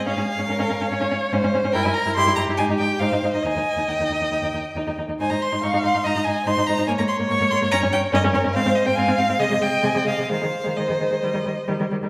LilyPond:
<<
  \new Staff \with { instrumentName = "Violin" } { \time 4/4 \key aes \major \tempo 4 = 141 f''2.~ f''8 r8 | g''16 aes''16 bes''8 c'''8 bes''8 aes''8 g''8 f''8. ees''16 | aes''4 g''2~ g''8 r8 | aes''16 bes''16 c'''8 des'''8 c'''8 bes''8 aes''8 c'''8 bes''8 |
aes''16 bes''16 c'''8 des'''8 c'''8 bes''8 g''8 ees''8 des''8 | f''8 ees''16 g''16 aes''8 f''8 ees''8 g''8 aes''16 g''16 f''8 | f''4 ees''2~ ees''8 r8 | }
  \new Staff \with { instrumentName = "Violin" } { \time 4/4 \key aes \major aes'4 bes'4 des''4 c''4 | bes'4 g'2 c''4 | ees''2.~ ees''8 r8 | c''4 f''4 ees''4 c''4 |
des''2. bes'4 | c''4 f''4 ees''2 | c''2.~ c''8 r8 | }
  \new Staff \with { instrumentName = "Viola" } { \time 4/4 \key aes \major des'16 des'16 r16 des'16 des'16 des'16 des'16 des'16 des'16 des'16 des'16 r16 des'16 des'16 des'16 des'16 | e'16 e'16 r16 e'16 e'16 e'16 e'16 e'16 ees'16 ees'16 ees'16 r16 ees'16 ees'16 ees'16 ees'16 | ees'16 ees'16 r16 ees'16 ees'16 ees'16 ees'16 ees'16 ees'16 ees'16 ees'16 r16 ees'16 ees'16 ees'16 ees'16 | ees'16 ees'16 r16 ees'16 ees'16 ees'16 ees'16 ees'16 ees'16 ees'16 ees'16 r16 ees'16 ees'16 ees'16 ees'16 |
bes16 bes16 r16 bes16 bes16 bes16 bes16 bes16 des'16 des'16 des'16 r16 des'16 des'16 des'16 des'16 | c'16 c'16 r16 c'16 c'16 c'16 c'16 c'16 aes16 aes16 aes16 r16 aes16 aes16 aes16 aes16 | aes16 aes16 r16 aes16 aes16 aes16 aes16 aes16 g16 g16 g16 r16 g16 g16 g16 g16 | }
  \new Staff \with { instrumentName = "Cello" } { \clef bass \time 4/4 \key aes \major aes,16 aes,16 r16 aes,16 aes,16 aes,16 aes,16 aes,16 aes,16 aes,16 aes,16 r16 aes,16 aes,16 aes,16 aes,16 | g,16 g,16 r16 g,16 g,16 g,16 g,16 g,16 aes,16 aes,16 aes,16 r16 aes,16 aes,16 aes,16 aes,16 | ees,16 ees,16 r16 ees,16 ees,16 ees,16 ees,16 ees,16 ees,16 ees,16 ees,16 r16 ees,16 ees,16 ees,16 ees,16 | aes,16 aes,16 r16 aes,16 aes,16 aes,16 aes,16 aes,16 aes,16 aes,16 aes,16 r16 aes,16 aes,16 aes,16 aes,16 |
aes,16 aes,16 r16 aes,16 aes,16 aes,16 aes,16 aes,16 g,16 g,16 g,16 r16 g,16 g,16 g,16 g,16 | aes,16 aes,16 r16 aes,16 aes,16 aes,16 aes,16 aes,16 c16 c16 c16 r16 c16 c16 c16 c16 | ees16 ees16 r16 ees16 ees16 ees16 ees16 ees16 ees16 ees16 ees16 r16 ees16 ees16 ees16 ees16 | }
>>